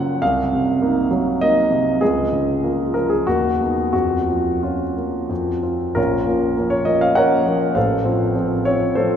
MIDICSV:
0, 0, Header, 1, 2, 480
1, 0, Start_track
1, 0, Key_signature, -5, "minor"
1, 0, Tempo, 592300
1, 177, Time_signature, 3, 2, 24, 8
1, 1133, Tempo, 620476
1, 2573, Tempo, 677201
1, 4493, Tempo, 598205
1, 7058, End_track
2, 0, Start_track
2, 0, Title_t, "Grand piano"
2, 0, Program_c, 0, 0
2, 0, Control_c, 0, 64, 127
2, 0, Note_on_c, 0, 42, 53
2, 0, Note_on_c, 0, 49, 44
2, 0, Note_on_c, 0, 54, 43
2, 0, Note_on_c, 0, 58, 45
2, 0, Note_on_c, 0, 65, 46
2, 0, Note_on_c, 0, 73, 76
2, 0, Note_on_c, 0, 78, 88
2, 143, Note_off_c, 0, 42, 0
2, 177, Note_off_c, 0, 49, 0
2, 177, Note_on_c, 0, 77, 84
2, 178, Note_off_c, 0, 78, 0
2, 181, Note_on_c, 0, 36, 57
2, 191, Control_c, 0, 64, 0
2, 194, Note_off_c, 0, 54, 0
2, 194, Note_off_c, 0, 58, 0
2, 194, Note_off_c, 0, 73, 0
2, 197, Note_off_c, 0, 65, 0
2, 317, Control_c, 0, 64, 127
2, 430, Note_on_c, 0, 48, 45
2, 662, Note_on_c, 0, 58, 44
2, 669, Note_on_c, 0, 63, 49
2, 803, Note_off_c, 0, 48, 0
2, 872, Note_off_c, 0, 58, 0
2, 876, Note_off_c, 0, 63, 0
2, 898, Note_on_c, 0, 54, 46
2, 1133, Note_off_c, 0, 77, 0
2, 1145, Note_on_c, 0, 75, 87
2, 1150, Note_on_c, 0, 58, 47
2, 1154, Note_on_c, 0, 63, 46
2, 1276, Note_off_c, 0, 54, 0
2, 1354, Note_off_c, 0, 58, 0
2, 1356, Note_off_c, 0, 63, 0
2, 1371, Note_on_c, 0, 48, 44
2, 1576, Note_off_c, 0, 36, 0
2, 1606, Note_off_c, 0, 48, 0
2, 1606, Note_on_c, 0, 68, 78
2, 1611, Note_off_c, 0, 75, 0
2, 1614, Note_on_c, 0, 37, 56
2, 1619, Control_c, 0, 64, 0
2, 1773, Control_c, 0, 64, 127
2, 1851, Note_on_c, 0, 49, 43
2, 2093, Note_on_c, 0, 58, 40
2, 2093, Note_on_c, 0, 65, 43
2, 2234, Note_off_c, 0, 49, 0
2, 2308, Note_off_c, 0, 58, 0
2, 2309, Note_off_c, 0, 65, 0
2, 2325, Note_on_c, 0, 70, 60
2, 2328, Note_off_c, 0, 68, 0
2, 2329, Note_on_c, 0, 53, 41
2, 2446, Note_on_c, 0, 68, 67
2, 2449, Note_off_c, 0, 70, 0
2, 2549, Note_off_c, 0, 37, 0
2, 2571, Note_off_c, 0, 68, 0
2, 2574, Note_off_c, 0, 53, 0
2, 2579, Note_on_c, 0, 66, 77
2, 2586, Control_c, 0, 64, 0
2, 2587, Note_on_c, 0, 39, 50
2, 2723, Control_c, 0, 64, 127
2, 2822, Note_on_c, 0, 59, 35
2, 2831, Note_on_c, 0, 63, 38
2, 3030, Note_off_c, 0, 59, 0
2, 3035, Note_off_c, 0, 63, 0
2, 3036, Note_off_c, 0, 66, 0
2, 3038, Note_off_c, 0, 39, 0
2, 3046, Note_on_c, 0, 66, 67
2, 3048, Note_on_c, 0, 41, 46
2, 3058, Control_c, 0, 64, 0
2, 3204, Control_c, 0, 64, 127
2, 3301, Note_on_c, 0, 53, 36
2, 3535, Note_off_c, 0, 66, 0
2, 3544, Note_on_c, 0, 65, 51
2, 3547, Note_on_c, 0, 61, 35
2, 3685, Note_off_c, 0, 53, 0
2, 3758, Note_off_c, 0, 61, 0
2, 3784, Note_on_c, 0, 58, 34
2, 3990, Note_off_c, 0, 41, 0
2, 4014, Note_on_c, 0, 41, 45
2, 4021, Note_off_c, 0, 58, 0
2, 4032, Control_c, 0, 64, 0
2, 4157, Control_c, 0, 64, 127
2, 4243, Note_off_c, 0, 65, 0
2, 4252, Note_on_c, 0, 60, 31
2, 4254, Note_on_c, 0, 65, 33
2, 4466, Note_off_c, 0, 60, 0
2, 4467, Note_off_c, 0, 65, 0
2, 4478, Note_off_c, 0, 41, 0
2, 4479, Note_on_c, 0, 70, 70
2, 4487, Note_on_c, 0, 34, 49
2, 4491, Note_on_c, 0, 61, 53
2, 4492, Note_on_c, 0, 65, 55
2, 4510, Control_c, 0, 64, 0
2, 4641, Control_c, 0, 64, 127
2, 4726, Note_off_c, 0, 34, 0
2, 4727, Note_off_c, 0, 61, 0
2, 4734, Note_on_c, 0, 58, 38
2, 4736, Note_on_c, 0, 53, 41
2, 4739, Note_on_c, 0, 61, 44
2, 4950, Note_off_c, 0, 58, 0
2, 4951, Note_off_c, 0, 53, 0
2, 4953, Note_off_c, 0, 61, 0
2, 4979, Note_on_c, 0, 58, 43
2, 4983, Note_on_c, 0, 53, 41
2, 4984, Note_on_c, 0, 61, 44
2, 5061, Note_off_c, 0, 65, 0
2, 5081, Note_on_c, 0, 73, 72
2, 5086, Note_off_c, 0, 70, 0
2, 5191, Note_off_c, 0, 58, 0
2, 5193, Note_off_c, 0, 53, 0
2, 5194, Note_off_c, 0, 61, 0
2, 5201, Note_on_c, 0, 75, 73
2, 5205, Note_on_c, 0, 53, 41
2, 5206, Note_off_c, 0, 73, 0
2, 5210, Note_on_c, 0, 61, 44
2, 5211, Note_on_c, 0, 58, 40
2, 5326, Note_off_c, 0, 75, 0
2, 5331, Note_on_c, 0, 77, 78
2, 5423, Note_off_c, 0, 53, 0
2, 5426, Note_off_c, 0, 58, 0
2, 5426, Note_off_c, 0, 61, 0
2, 5444, Note_on_c, 0, 78, 92
2, 5451, Note_off_c, 0, 77, 0
2, 5455, Note_on_c, 0, 73, 69
2, 5456, Note_on_c, 0, 53, 41
2, 5457, Note_on_c, 0, 58, 43
2, 5458, Note_on_c, 0, 70, 65
2, 5459, Note_on_c, 0, 61, 44
2, 5669, Note_off_c, 0, 53, 0
2, 5670, Note_off_c, 0, 58, 0
2, 5671, Note_off_c, 0, 61, 0
2, 5691, Note_on_c, 0, 53, 41
2, 5699, Note_on_c, 0, 61, 41
2, 5700, Note_on_c, 0, 58, 40
2, 5899, Note_off_c, 0, 73, 0
2, 5901, Note_off_c, 0, 70, 0
2, 5906, Note_off_c, 0, 53, 0
2, 5911, Note_off_c, 0, 58, 0
2, 5911, Note_off_c, 0, 61, 0
2, 5923, Note_on_c, 0, 77, 67
2, 5926, Note_off_c, 0, 78, 0
2, 5926, Note_on_c, 0, 33, 52
2, 5928, Note_on_c, 0, 72, 52
2, 5936, Note_on_c, 0, 69, 49
2, 5943, Control_c, 0, 64, 0
2, 6088, Control_c, 0, 64, 127
2, 6161, Note_off_c, 0, 33, 0
2, 6164, Note_on_c, 0, 60, 44
2, 6165, Note_on_c, 0, 53, 41
2, 6385, Note_off_c, 0, 60, 0
2, 6386, Note_off_c, 0, 53, 0
2, 6406, Note_on_c, 0, 60, 48
2, 6410, Note_on_c, 0, 53, 44
2, 6624, Note_off_c, 0, 72, 0
2, 6628, Note_off_c, 0, 69, 0
2, 6629, Note_off_c, 0, 60, 0
2, 6631, Note_off_c, 0, 53, 0
2, 6647, Note_on_c, 0, 73, 78
2, 6653, Note_off_c, 0, 77, 0
2, 6654, Note_on_c, 0, 53, 44
2, 6655, Note_on_c, 0, 60, 46
2, 6872, Note_off_c, 0, 53, 0
2, 6872, Note_off_c, 0, 60, 0
2, 6888, Note_on_c, 0, 72, 68
2, 6892, Note_off_c, 0, 73, 0
2, 6900, Note_on_c, 0, 69, 53
2, 6901, Note_on_c, 0, 53, 46
2, 6901, Note_on_c, 0, 65, 53
2, 6904, Note_on_c, 0, 60, 47
2, 7058, Note_off_c, 0, 53, 0
2, 7058, Note_off_c, 0, 60, 0
2, 7058, Note_off_c, 0, 65, 0
2, 7058, Note_off_c, 0, 69, 0
2, 7058, Note_off_c, 0, 72, 0
2, 7058, End_track
0, 0, End_of_file